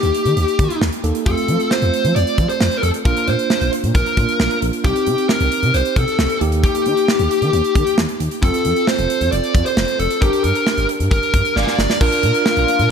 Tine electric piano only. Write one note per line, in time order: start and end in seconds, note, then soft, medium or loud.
0.00 1.00 A#3 medium
0.00 1.00 D#4 medium
0.00 1.00 G4 medium
1.04 1.26 A#3 medium
1.04 1.26 D#4 medium
1.04 1.26 A4 medium
1.26 3.02 A3 medium
1.26 3.02 C4 medium
1.26 3.02 F4 medium
3.05 4.15 A#3 medium
3.05 4.15 D4 medium
3.05 4.15 F4 medium
4.17 4.84 A#3 soft
4.17 4.84 D4 soft
4.17 4.84 F4 medium
4.84 6.38 C4 medium
4.84 6.38 D#4 medium
4.84 6.38 G4 medium
6.41 8.39 A#3 medium
6.41 8.39 D#4 medium
6.41 8.39 G4 medium
8.43 10.18 C4 medium
8.43 10.18 F4 medium
8.43 10.18 A4 medium
10.22 11.97 D4 medium
10.22 11.97 G4 medium
10.22 11.97 A#4 medium
12.01 12.91 D4 medium
12.01 12.91 F4 medium
12.01 12.91 A#4 medium